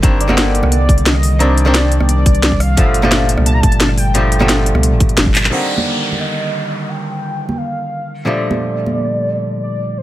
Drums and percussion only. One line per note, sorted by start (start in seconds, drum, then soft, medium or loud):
0.03 kick loud
0.03 closed hi-hat medium
0.21 closed hi-hat medium
0.29 cross-stick soft
0.29 high conga medium
0.38 snare loud
0.38 closed hi-hat medium
0.55 closed hi-hat medium
0.63 cross-stick soft
0.63 high conga medium
0.72 closed hi-hat medium
0.89 kick loud
0.89 closed hi-hat medium
0.98 closed hi-hat soft
1.06 snare loud
1.06 closed hi-hat medium
1.15 cross-stick soft
1.23 open hi-hat medium
1.40 closed hi-hat medium
1.58 closed hi-hat medium
1.66 cross-stick soft
1.75 snare loud
1.75 closed hi-hat medium
1.92 closed hi-hat medium
2.00 cross-stick soft
2.00 high conga medium
2.09 closed hi-hat medium
2.26 kick loud
2.26 closed hi-hat medium
2.35 closed hi-hat soft
2.43 snare loud
2.43 closed hi-hat medium
2.52 kick medium
2.60 cross-stick medium
2.60 open hi-hat medium
2.77 kick loud
2.77 closed hi-hat loud
2.94 closed hi-hat medium
3.03 cross-stick soft
3.03 high conga medium
3.12 snare loud
3.12 closed hi-hat loud
3.29 closed hi-hat medium
3.37 cross-stick soft
3.37 high conga medium
3.46 closed hi-hat medium
3.63 kick loud
3.63 closed hi-hat medium
3.72 closed hi-hat soft
3.80 snare loud
3.80 closed hi-hat loud
3.89 cross-stick soft
3.98 open hi-hat medium
4.15 closed hi-hat loud
4.32 closed hi-hat medium
4.40 cross-stick soft
4.40 high conga medium
4.49 snare loud
4.49 closed hi-hat loud
4.66 closed hi-hat medium
4.75 cross-stick soft
4.75 high conga medium
4.83 closed hi-hat loud
5.00 kick loud
5.00 closed hi-hat medium
5.09 closed hi-hat soft
5.17 snare loud
5.17 closed hi-hat loud
5.26 kick medium
5.35 clap medium
5.35 open hi-hat medium
5.43 clap loud
5.78 high conga medium
6.12 high conga medium
7.49 high conga medium
8.51 high conga medium
8.86 high conga medium